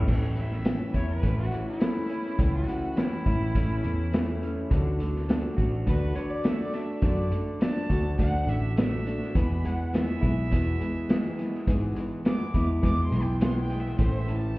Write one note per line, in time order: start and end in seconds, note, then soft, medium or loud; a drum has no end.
0.07 0.80 A1 loud
0.07 0.36 A2 medium
0.07 0.36 E3 medium
0.07 0.36 A3 medium
0.07 0.36 C#4 medium
0.07 0.34 E4 medium
0.07 kick loud
0.07 crash loud
0.35 1.51 E3 medium
0.35 0.63 A3 soft
0.35 0.64 C#4 soft
0.35 0.65 E4 medium
0.35 0.93 E5 medium
0.35 closed hi-hat medium
0.52 snare soft
0.64 0.94 E3 medium
0.64 0.93 A3 medium
0.64 0.92 C#4 medium
0.64 0.91 E4 medium
0.64 snare loud
0.64 closed hi-hat medium
0.92 1.19 E2 medium
0.92 1.21 A3 soft
0.92 1.22 C#4 soft
0.92 1.22 E4 medium
0.92 1.08 C#5 medium
0.92 kick medium
0.92 closed hi-hat medium
1.10 1.37 B4 medium
1.22 1.48 A1 loud
1.22 1.51 A2 medium
1.22 1.51 E3 medium
1.22 1.52 A3 medium
1.22 1.50 C#4 medium
1.22 1.49 E4 medium
1.22 kick medium
1.22 closed hi-hat medium
1.39 1.66 F#4 medium
1.50 2.67 E3 medium
1.50 1.79 A3 soft
1.50 1.80 C#4 soft
1.50 1.80 E4 medium
1.50 closed hi-hat medium
1.68 2.52 E4 medium
1.79 2.09 E3 medium
1.79 2.09 A3 medium
1.79 2.08 C#4 medium
1.79 2.07 E4 medium
1.79 snare loud
1.79 closed hi-hat loud
2.08 2.37 A3 soft
2.08 2.38 C#4 soft
2.08 2.38 E4 soft
2.08 closed hi-hat medium
2.25 snare soft
2.38 2.63 C#2 medium
2.38 2.67 A2 medium
2.38 2.68 E3 medium
2.38 2.67 A3 medium
2.38 2.67 C#4 medium
2.38 2.66 E4 medium
2.38 kick loud
2.38 closed hi-hat medium
2.54 2.99 F#4 medium
2.67 3.82 E3 medium
2.67 2.95 A3 soft
2.67 2.96 C#4 soft
2.67 2.96 E4 medium
2.67 closed hi-hat medium
2.96 3.25 E3 medium
2.96 3.25 A3 medium
2.96 3.26 C#4 medium
2.96 4.67 E4 loud
2.96 3.24 E4 medium
2.96 snare loud
2.96 closed hi-hat medium
3.25 3.50 A1 medium
3.25 3.54 A3 soft
3.25 3.54 C#4 medium
3.25 3.55 E4 medium
3.25 kick medium
3.25 closed hi-hat medium
3.54 3.79 A1 loud
3.54 3.83 A2 medium
3.54 3.84 E3 medium
3.54 3.84 A3 loud
3.54 3.83 C#4 medium
3.54 3.82 E4 medium
3.54 kick medium
3.54 closed hi-hat medium
3.83 4.57 E2 medium
3.83 4.70 E3 medium
3.83 4.13 A3 medium
3.83 4.13 C#4 soft
3.83 4.12 E4 medium
3.83 closed hi-hat medium
4.13 4.42 E3 medium
4.13 4.42 A3 medium
4.13 4.43 C#4 medium
4.13 4.41 E4 medium
4.13 snare loud
4.13 closed hi-hat loud
4.43 4.71 A3 soft
4.43 4.72 C#4 medium
4.43 4.71 E4 medium
4.43 closed hi-hat medium
4.71 5.44 D2 loud
4.71 5.00 D3 medium
4.71 5.00 A3 medium
4.71 5.00 D4 medium
4.71 4.99 F#4 medium
4.71 kick loud
4.71 closed hi-hat medium
4.99 6.15 D3 medium
4.99 5.29 A3 soft
4.99 5.29 D4 soft
4.99 5.29 F#4 medium
4.99 closed hi-hat medium
5.16 snare soft
5.29 5.58 D3 medium
5.29 5.58 A3 medium
5.29 5.59 D4 medium
5.29 5.58 F#4 medium
5.29 snare loud
5.29 closed hi-hat medium
5.58 5.82 A1 medium
5.58 5.86 A3 medium
5.58 5.87 D4 medium
5.58 5.87 F#4 medium
5.58 kick medium
5.58 closed hi-hat medium
5.87 6.11 D2 loud
5.87 6.16 D3 medium
5.87 6.16 A3 medium
5.87 6.15 D4 medium
5.87 6.14 F#4 medium
5.87 6.17 B4 loud
5.87 kick medium
5.87 closed hi-hat loud
6.15 7.01 D3 medium
6.15 6.45 A3 soft
6.15 6.45 D4 soft
6.15 6.44 F#4 medium
6.15 6.31 C#5 medium
6.15 closed hi-hat medium
6.30 6.47 D5 medium
6.44 6.74 D3 medium
6.44 6.74 A3 medium
6.44 6.74 D4 medium
6.44 6.72 F#4 medium
6.44 6.58 E5 medium
6.44 snare loud
6.44 closed hi-hat medium
6.60 6.76 D5 medium
6.74 7.02 A3 soft
6.74 7.03 D4 soft
6.74 7.03 F#4 medium
6.74 7.06 E5 medium
6.74 snare soft
6.74 closed hi-hat medium
7.02 7.27 F#2 loud
7.02 7.32 D3 medium
7.02 7.32 A3 medium
7.02 7.32 D4 medium
7.02 7.31 F#4 medium
7.02 7.32 D5 medium
7.02 kick loud
7.02 closed hi-hat loud
7.31 8.46 D3 medium
7.31 7.60 A3 soft
7.31 7.61 D4 soft
7.31 7.61 F#4 medium
7.31 closed hi-hat medium
7.61 7.90 D3 medium
7.61 7.90 A3 medium
7.61 7.90 D4 medium
7.61 7.88 F#4 medium
7.61 8.17 A5 loud
7.61 snare loud
7.61 closed hi-hat loud
7.89 8.14 D2 medium
7.89 8.17 A3 soft
7.89 8.17 D4 soft
7.89 8.18 F#4 medium
7.89 kick medium
7.89 closed hi-hat medium
8.18 8.43 D2 medium
8.18 8.47 D3 medium
8.18 8.47 A3 medium
8.18 8.48 D4 medium
8.18 8.46 F#4 medium
8.18 8.51 F#5 loud
8.18 kick medium
8.18 closed hi-hat loud
8.47 9.20 A1 medium
8.47 9.35 D3 medium
8.47 8.75 A3 soft
8.47 8.76 D4 soft
8.47 8.76 F#4 medium
8.47 8.76 E5 medium
8.47 closed hi-hat medium
8.76 9.05 D3 medium
8.76 9.05 A3 medium
8.76 9.06 D4 medium
8.76 9.05 F#4 medium
8.76 9.37 E5 medium
8.76 snare loud
8.76 closed hi-hat loud
9.06 9.35 A3 soft
9.06 9.35 D4 soft
9.06 9.35 F#4 soft
9.06 closed hi-hat medium
9.22 snare soft
9.35 9.64 E2 medium
9.35 10.08 E2 loud
9.35 9.64 B2 medium
9.35 9.64 E3 medium
9.35 9.64 G#3 medium
9.35 9.64 B3 medium
9.35 9.63 G#4 medium
9.35 9.67 B5 medium
9.35 kick loud
9.35 closed hi-hat medium
9.64 9.92 E3 soft
9.64 9.93 G#3 soft
9.64 9.93 B3 soft
9.64 9.93 G#4 soft
9.64 9.93 F#5 medium
9.64 closed hi-hat medium
9.93 10.22 E3 medium
9.93 10.22 G#3 medium
9.93 10.22 B3 medium
9.93 10.20 G#4 medium
9.93 11.64 E5 loud
9.93 snare loud
9.93 closed hi-hat medium
10.20 10.47 B1 medium
10.20 10.51 E3 soft
10.20 10.51 G#3 soft
10.20 10.51 B3 soft
10.20 12.54 E4 medium
10.20 10.51 G#4 medium
10.20 kick medium
10.20 closed hi-hat medium
10.51 10.80 E2 medium
10.51 10.76 E2 loud
10.51 10.80 B2 medium
10.51 10.80 E3 medium
10.51 10.81 G#3 medium
10.51 10.80 B3 medium
10.51 10.79 G#4 medium
10.51 kick medium
10.51 closed hi-hat loud
10.81 11.08 E3 soft
10.81 11.09 G#3 medium
10.81 11.10 B3 medium
10.81 11.09 G#4 medium
10.81 closed hi-hat medium
11.09 11.38 E3 medium
11.09 11.38 G#3 medium
11.09 11.37 B3 medium
11.09 11.36 G#4 medium
11.09 snare loud
11.09 closed hi-hat loud
11.37 11.67 E3 soft
11.37 11.68 G#3 soft
11.37 11.67 B3 medium
11.37 11.67 G#4 medium
11.37 snare soft
11.37 closed hi-hat medium
11.54 snare soft
11.67 11.96 E2 medium
11.67 11.92 G#2 medium
11.67 11.96 B2 medium
11.67 11.97 E3 medium
11.67 11.96 G#3 medium
11.67 11.95 B3 medium
11.67 11.94 G#4 medium
11.67 kick loud
11.67 closed hi-hat loud
11.95 12.24 E3 soft
11.95 12.25 G#3 soft
11.95 12.25 B3 medium
11.95 12.25 G#4 medium
11.95 closed hi-hat medium
12.25 12.54 E3 medium
12.25 12.54 G#3 medium
12.25 12.54 B3 medium
12.25 12.53 G#4 medium
12.25 12.64 D6 medium
12.25 snare loud
12.25 closed hi-hat medium
12.54 12.79 E2 medium
12.54 12.81 E3 soft
12.54 12.81 G#3 medium
12.54 12.81 B3 medium
12.54 13.99 E4 medium
12.54 12.82 G#4 medium
12.54 kick medium
12.54 closed hi-hat medium
12.81 13.11 E2 medium
12.81 13.07 E2 loud
12.81 13.11 B2 medium
12.81 13.12 E3 medium
12.81 13.11 G#3 medium
12.81 13.10 B3 medium
12.81 13.09 G#4 medium
12.81 13.02 D6 loud
12.81 kick medium
12.81 closed hi-hat loud
13.04 13.24 C6 loud
13.10 13.85 B1 medium
13.10 13.39 E3 soft
13.10 13.40 G#3 soft
13.10 13.40 B3 medium
13.10 13.40 G#4 soft
13.10 closed hi-hat medium
13.23 13.41 G5 medium
13.40 13.69 E3 medium
13.40 13.70 G#3 medium
13.40 13.70 B3 medium
13.40 13.68 G#4 medium
13.40 13.60 C6 medium
13.40 snare loud
13.40 closed hi-hat loud
13.61 13.81 G5 medium
13.70 13.97 E3 soft
13.70 13.98 G#3 soft
13.70 13.99 B3 medium
13.70 13.99 G#4 soft
13.70 closed hi-hat medium
13.80 13.98 E5 medium
13.86 snare soft
13.98 14.58 A1 medium
13.98 14.28 A2 medium
13.98 14.28 E3 medium
13.98 14.28 A3 medium
13.98 14.27 C#4 medium
13.98 14.26 A4 medium
13.98 14.19 C5 medium
13.98 kick loud
13.98 closed hi-hat medium
14.18 14.37 E5 medium
14.27 14.58 E3 medium
14.27 14.56 A3 soft
14.27 14.57 C#4 soft
14.27 14.57 A4 medium
14.27 closed hi-hat medium
14.38 14.58 A5 loud